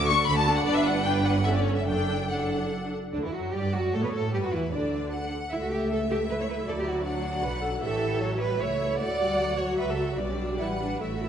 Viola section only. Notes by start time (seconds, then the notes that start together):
0.10 D4 A4
0.29 A3 F#4
0.48 D4 A4
0.67 D4 B4
1.07 D4 B4
1.46 C#4 A4
1.88 D4 A4
2.30 D4 A4
3.13 D3
3.24 E3
3.34 F#3
3.54 G3
3.73 F#3
3.94 A3
4.03 B3
4.15 A3
4.33 G3
4.44 F#3
4.53 E3
4.73 D3
5.52 A3 A4
6.30 E4
6.68 F#3
7.05 F#4
7.43 B4
7.63 A4
7.82 E3 G4
8.21 F#3 F#4
8.41 G3
8.60 A3 E4
8.80 E4
8.99 A3 F#4
9.20 G3
9.39 F#3
9.59 F#3
10.19 G3
10.59 B4
11.00 A3 A4